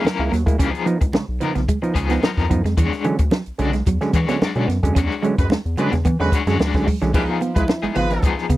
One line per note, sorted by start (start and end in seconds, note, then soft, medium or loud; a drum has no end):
0.05 0.30 E3 medium
0.05 0.31 A#3 medium
0.05 0.31 C#4 medium
0.05 0.31 A#4 loud
0.05 snare loud
0.05 high conga medium
0.19 0.30 C#2 medium
0.19 0.30 G#3 medium
0.19 0.30 A#3 medium
0.19 0.30 E4 medium
0.32 0.45 D#2 medium
0.32 0.44 F#3 medium
0.32 0.41 A#3 medium
0.32 muted clean electric guitar stroke soft
0.32 snare soft
0.32 closed hi-hat medium
0.32 high conga medium
0.46 0.57 D2 medium
0.46 0.57 G#3 medium
0.46 0.57 A#3 medium
0.46 0.57 E4 medium
0.46 muted clean electric guitar stroke soft
0.46 kick medium
0.46 closed hi-hat soft
0.59 0.72 C#2 loud
0.59 0.71 C#3 medium
0.59 0.70 E3 medium
0.59 0.71 A#3 medium
0.59 0.68 C#4 medium
0.59 0.85 D#4 medium
0.59 0.85 G#4 medium
0.59 kick loud
0.59 closed hi-hat medium
0.59 muted conga medium
0.70 0.84 F3 medium
0.70 0.85 B3 medium
0.70 muted clean electric guitar stroke medium
0.75 closed hi-hat soft
0.86 0.98 F3 medium
0.86 0.95 F3 medium
0.86 0.98 B3 medium
0.86 0.98 D#4 medium
0.86 closed hi-hat medium
0.86 muted conga soft
1.01 1.12 C#2 medium
1.01 muted clean electric guitar stroke soft
1.01 kick medium
1.01 closed hi-hat medium
1.13 1.20 B1 soft
1.13 1.25 C#3 soft
1.13 1.23 G#3 medium
1.13 muted clean electric guitar stroke soft
1.13 snare loud
1.13 high conga medium
1.29 1.39 B1 medium
1.40 1.52 F3 medium
1.40 1.58 F3 medium
1.40 1.53 B3 medium
1.40 1.55 B3 medium
1.40 1.53 D#4 medium
1.40 1.55 D#4 medium
1.40 1.55 A#4 medium
1.40 muted clean electric guitar stroke soft
1.40 closed hi-hat medium
1.40 low conga medium
1.55 1.67 B1 loud
1.55 1.61 B3 soft
1.55 1.63 B3 medium
1.55 1.61 D#4 soft
1.55 muted clean electric guitar stroke medium
1.55 snare soft
1.55 closed hi-hat soft
1.55 low conga medium
1.68 1.78 G#3 medium
1.68 muted clean electric guitar stroke soft
1.68 kick loud
1.68 closed hi-hat medium
1.68 muted conga soft
1.82 1.93 F3 medium
1.82 1.93 B3 medium
1.82 1.93 D#4 medium
1.82 muted clean electric guitar stroke soft
1.82 closed hi-hat soft
1.94 2.19 C#2 medium
1.94 2.07 C#3 medium
1.94 2.10 F3 medium
1.94 2.10 B3 medium
1.94 2.09 D#4 medium
1.94 2.09 G#4 medium
1.94 kick medium
1.94 closed hi-hat medium
2.09 2.20 F3 medium
2.09 2.22 F3 medium
2.09 2.20 B3 medium
2.09 2.19 B3 medium
2.09 2.22 B3 medium
2.09 2.20 D#4 medium
2.09 2.23 D#4 medium
2.09 2.24 G#4 medium
2.09 snare soft
2.09 closed hi-hat medium
2.23 2.48 F3 medium
2.23 2.49 B3 loud
2.23 2.49 D#4 loud
2.23 2.49 A#4 loud
2.23 muted clean electric guitar stroke soft
2.23 snare loud
2.23 high conga medium
2.37 2.48 F2 medium
2.37 kick medium
2.37 snare soft
2.49 2.63 F#2 medium
2.49 2.61 F3 medium
2.49 2.62 B3 medium
2.49 2.59 B3 medium
2.49 2.62 D#4 medium
2.49 muted clean electric guitar stroke soft
2.49 kick medium
2.49 closed hi-hat medium
2.49 high conga medium
2.64 2.76 F2 medium
2.64 2.73 G#3 medium
2.64 muted clean electric guitar stroke soft
2.64 snare soft
2.64 closed hi-hat medium
2.77 2.90 E2 loud
2.77 2.87 E3 medium
2.77 3.03 G#3 medium
2.77 3.03 D4 medium
2.77 3.03 F#4 medium
2.77 3.04 C#5 medium
2.77 kick loud
2.77 closed hi-hat medium
2.77 muted conga soft
2.93 muted clean electric guitar stroke soft
2.93 snare soft
2.93 closed hi-hat soft
3.04 3.16 D3 medium
3.04 3.14 E3 medium
3.04 3.16 F#3 medium
3.04 3.16 G#3 medium
3.04 3.16 C#4 loud
3.04 closed hi-hat medium
3.04 muted conga soft
3.18 3.30 D2 medium
3.18 muted clean electric guitar stroke soft
3.18 kick medium
3.18 closed hi-hat medium
3.31 3.41 F#3 medium
3.31 muted clean electric guitar stroke soft
3.31 snare loud
3.31 high conga medium
3.46 3.52 B1 medium
3.46 closed hi-hat soft
3.58 3.82 B1 medium
3.58 3.71 D3 medium
3.58 3.71 F#3 medium
3.58 3.71 G#3 medium
3.58 3.76 G#3 medium
3.58 3.71 C#4 medium
3.58 3.74 D4 medium
3.58 3.74 F#4 medium
3.58 3.74 D5 medium
3.58 muted clean electric guitar stroke soft
3.58 closed hi-hat medium
3.58 low conga medium
3.73 3.79 G#3 soft
3.73 3.82 G#3 medium
3.73 3.79 C#4 soft
3.73 muted clean electric guitar stroke soft
3.73 snare soft
3.73 closed hi-hat medium
3.86 3.99 E2 medium
3.86 3.96 F#3 medium
3.86 muted clean electric guitar stroke soft
3.86 kick medium
3.86 closed hi-hat medium
3.86 muted conga soft
4.01 4.11 D3 medium
4.01 4.12 F#3 medium
4.01 4.11 G#3 medium
4.01 4.12 C#4 medium
4.01 muted clean electric guitar stroke medium
4.01 snare soft
4.01 closed hi-hat soft
4.13 4.26 E3 loud
4.13 4.31 G#3 medium
4.13 4.30 D4 medium
4.13 4.29 F#4 medium
4.13 4.28 C#5 medium
4.13 kick medium
4.13 closed hi-hat medium
4.28 4.39 D3 medium
4.28 4.39 F#3 medium
4.28 4.39 G#3 medium
4.28 4.41 G#3 medium
4.28 4.37 B3 medium
4.28 4.39 C#4 medium
4.28 4.42 D4 medium
4.28 4.42 F#4 medium
4.28 4.44 C#5 medium
4.28 snare soft
4.28 closed hi-hat medium
4.42 4.67 G#3 medium
4.42 4.67 D4 loud
4.42 4.68 F#4 loud
4.42 4.68 D5 loud
4.42 snare loud
4.42 high conga medium
4.55 4.67 B2 medium
4.55 4.66 D3 medium
4.55 4.66 F#3 medium
4.55 4.66 G#3 medium
4.55 4.66 C#4 medium
4.55 closed hi-hat soft
4.68 4.81 F#2 medium
4.68 4.77 B3 medium
4.68 muted clean electric guitar stroke soft
4.68 snare soft
4.68 closed hi-hat medium
4.68 high conga medium
4.83 4.94 F2 medium
4.83 4.93 D3 medium
4.83 4.93 F#3 medium
4.83 4.94 G#3 medium
4.83 4.94 C#4 medium
4.83 muted clean electric guitar stroke soft
4.83 kick medium
4.83 closed hi-hat medium
4.95 5.08 E2 loud
4.95 5.22 G#3 medium
4.95 5.04 C#4 medium
4.95 5.22 D4 medium
4.95 5.22 F#4 medium
4.95 5.23 C#5 medium
4.95 kick loud
4.95 closed hi-hat medium
4.95 muted conga medium
5.10 muted clean electric guitar stroke medium
5.10 closed hi-hat soft
5.23 5.35 D3 medium
5.23 5.35 F#3 medium
5.23 5.32 G#3 medium
5.23 5.35 G#3 medium
5.23 5.35 C#4 loud
5.23 closed hi-hat medium
5.23 muted conga soft
5.38 5.49 F#2 medium
5.38 5.46 G#3 medium
5.38 5.46 F#4 medium
5.38 5.46 B4 medium
5.38 muted clean electric guitar stroke soft
5.38 kick medium
5.38 closed hi-hat medium
5.50 5.57 E2 soft
5.50 5.59 G#3 medium
5.50 muted clean electric guitar stroke soft
5.50 snare loud
5.50 high conga medium
5.65 5.76 E2 medium
5.65 closed hi-hat soft
5.77 5.89 D3 medium
5.77 5.90 F#3 medium
5.77 5.87 G#3 medium
5.77 5.90 G#3 medium
5.77 5.95 G#3 medium
5.77 5.90 C#4 medium
5.77 5.94 D4 medium
5.77 5.87 F#4 medium
5.77 5.93 F#4 medium
5.77 5.87 B4 medium
5.77 5.94 D5 medium
5.77 muted clean electric guitar stroke soft
5.77 closed hi-hat medium
5.77 low conga medium
5.92 6.04 E2 medium
5.92 5.98 G#3 soft
5.92 6.00 B3 medium
5.92 5.98 C#4 soft
5.92 muted clean electric guitar stroke medium
5.92 snare soft
5.92 closed hi-hat medium
5.92 low conga medium
6.05 6.17 E3 medium
6.05 6.14 B3 medium
6.05 muted clean electric guitar stroke soft
6.05 kick medium
6.05 closed hi-hat medium
6.05 muted conga medium
6.19 6.30 E2 medium
6.19 6.30 D3 medium
6.19 6.30 F#3 medium
6.19 6.37 G#3 medium
6.19 6.30 G#3 medium
6.19 6.30 C#4 medium
6.19 6.37 F#4 medium
6.19 6.37 B4 loud
6.19 muted clean electric guitar stroke medium
6.32 6.48 G#3 medium
6.32 6.47 D4 medium
6.32 6.47 F#4 medium
6.32 6.46 C#5 medium
6.32 kick loud
6.32 closed hi-hat medium
6.47 6.58 F#2 medium
6.47 6.57 D3 medium
6.47 6.57 F#3 medium
6.47 6.55 G#3 medium
6.47 6.57 G#3 medium
6.47 6.58 G#3 medium
6.47 6.57 C#4 medium
6.47 6.59 D4 medium
6.47 6.59 F#4 medium
6.47 6.61 C#5 medium
6.47 snare soft
6.47 closed hi-hat medium
6.59 6.72 D2 medium
6.59 6.85 G#3 medium
6.59 6.85 D4 medium
6.59 6.85 F#4 loud
6.59 6.86 D5 loud
6.59 muted clean electric guitar stroke soft
6.59 snare loud
6.59 high conga medium
6.73 6.85 C#2 loud
6.73 6.85 D3 medium
6.73 6.85 F#3 medium
6.73 6.85 G#3 medium
6.73 6.85 C#4 medium
6.73 kick loud
6.73 snare soft
6.73 closed hi-hat soft
6.87 6.96 G#3 medium
6.87 muted clean electric guitar stroke soft
6.87 kick loud
6.87 open hi-hat medium
6.87 high conga medium
7.02 7.12 B1 medium
7.02 7.12 D3 medium
7.02 7.09 E3 medium
7.02 7.12 F#3 medium
7.02 7.12 G#3 medium
7.02 7.12 C#4 medium
7.02 muted clean electric guitar stroke soft
7.02 snare soft
7.02 closed hi-hat soft
7.13 7.26 C#2 loud
7.13 7.24 E3 medium
7.13 7.95 F3 medium
7.13 7.23 G#3 medium
7.13 7.25 A#3 medium
7.13 7.95 B3 medium
7.13 7.96 D#4 medium
7.13 7.40 D#4 medium
7.13 7.23 F4 medium
7.13 7.29 G#4 loud
7.13 7.40 G#4 medium
7.13 7.23 B4 medium
7.13 kick loud
7.13 crash medium
7.13 muted conga medium
7.24 7.39 F3 medium
7.24 7.39 B3 medium
7.29 7.57 F4 medium
7.29 muted clean electric guitar stroke soft
7.41 7.50 B3 medium
7.41 closed hi-hat medium
7.41 muted conga soft
7.55 7.67 B1 medium
7.55 7.63 G#3 loud
7.55 7.64 G#3 medium
7.55 7.98 E4 medium
7.55 7.64 F4 medium
7.55 7.63 B4 loud
7.55 muted clean electric guitar stroke soft
7.55 kick medium
7.55 closed hi-hat medium
7.68 muted clean electric guitar stroke soft
7.68 snare loud
7.68 high conga medium
7.82 7.88 G#1 soft
7.82 7.94 F3 medium
7.82 7.91 G#3 medium
7.82 7.95 B3 medium
7.82 7.95 D#4 medium
7.82 7.95 G#4 medium
7.82 closed hi-hat soft
7.95 8.19 G#1 loud
7.95 8.21 F3 soft
7.95 8.31 G#3 loud
7.95 8.05 B3 medium
7.95 8.11 B3 soft
7.95 8.21 D#4 soft
7.95 8.31 F4 loud
7.95 8.12 F4 medium
7.95 8.31 B4 loud
7.95 muted clean electric guitar stroke soft
7.95 closed hi-hat medium
7.95 low conga medium
8.10 8.37 B3 medium
8.10 muted clean electric guitar stroke soft
8.10 snare soft
8.10 closed hi-hat soft
8.22 8.35 C#2 medium
8.22 8.44 F3 medium
8.22 8.44 B3 medium
8.22 8.45 D#4 medium
8.22 8.45 G#4 medium
8.22 kick medium
8.22 closed hi-hat medium
8.22 muted conga medium
8.38 snare soft
8.49 8.57 C#3 loud
8.49 8.57 B3 medium
8.49 muted clean electric guitar stroke soft
8.49 kick medium
8.49 closed hi-hat medium